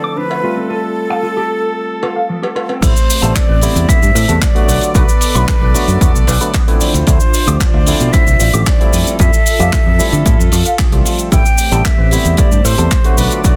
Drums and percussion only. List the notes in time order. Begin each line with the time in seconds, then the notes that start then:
0.31 cowbell
2.03 cowbell
2.43 cowbell
2.56 cowbell
2.69 cowbell
2.82 kick, closed hi-hat, crash, cabasa
2.96 cabasa
3.10 open hi-hat, cabasa
3.23 closed hi-hat, cabasa
3.36 kick, clap, closed hi-hat, cabasa
3.61 open hi-hat, cabasa
3.76 closed hi-hat, cabasa
3.89 kick, closed hi-hat, cabasa
4.03 cabasa
4.16 open hi-hat, cabasa
4.29 closed hi-hat, cabasa
4.42 kick, clap, closed hi-hat, cabasa
4.56 closed hi-hat
4.69 open hi-hat, cabasa
4.81 closed hi-hat, cabasa
4.95 kick, closed hi-hat, cabasa
5.09 cabasa
5.21 open hi-hat, cabasa
5.35 closed hi-hat, cabasa
5.48 kick, clap, closed hi-hat, cabasa
5.74 open hi-hat, cabasa
5.88 closed hi-hat, cabasa
6.01 kick, closed hi-hat, cabasa
6.16 cabasa
6.27 open hi-hat, cabasa
6.41 closed hi-hat, cabasa
6.54 kick, clap, closed hi-hat, cabasa
6.68 closed hi-hat
6.81 open hi-hat, cabasa
6.94 closed hi-hat, cabasa
7.07 kick, closed hi-hat, cabasa
7.20 cabasa
7.34 open hi-hat, cabasa
7.48 closed hi-hat, cabasa
7.60 kick, clap, closed hi-hat, cabasa
7.86 open hi-hat, cabasa
8.00 closed hi-hat, cabasa
8.13 kick, closed hi-hat, cabasa
8.27 cabasa
8.40 open hi-hat, cabasa
8.53 closed hi-hat, cabasa
8.66 kick, clap, closed hi-hat, cabasa
8.81 closed hi-hat
8.93 open hi-hat, cabasa
9.07 closed hi-hat, cabasa
9.19 kick, closed hi-hat, cabasa
9.33 cabasa
9.46 open hi-hat, cabasa
9.59 closed hi-hat, cabasa
9.73 kick, clap, closed hi-hat, cabasa
10.00 open hi-hat, cabasa
10.12 closed hi-hat, cabasa
10.26 kick, closed hi-hat, cabasa
10.41 cabasa
10.52 open hi-hat, cabasa
10.65 closed hi-hat, cabasa
10.79 kick, clap, closed hi-hat, cabasa
10.92 closed hi-hat
11.05 open hi-hat, cabasa
11.19 closed hi-hat, cabasa
11.32 kick, closed hi-hat, cabasa
11.46 cabasa
11.58 open hi-hat, cabasa
11.72 closed hi-hat, cabasa
11.85 kick, clap, closed hi-hat, cabasa
12.11 open hi-hat, cabasa
12.25 closed hi-hat, cabasa
12.37 kick, closed hi-hat, cabasa
12.52 cabasa
12.65 open hi-hat, cabasa
12.78 closed hi-hat, cabasa
12.91 kick, clap, closed hi-hat, cabasa
13.04 closed hi-hat
13.18 open hi-hat, cabasa
13.31 closed hi-hat, cabasa
13.44 kick, closed hi-hat, cabasa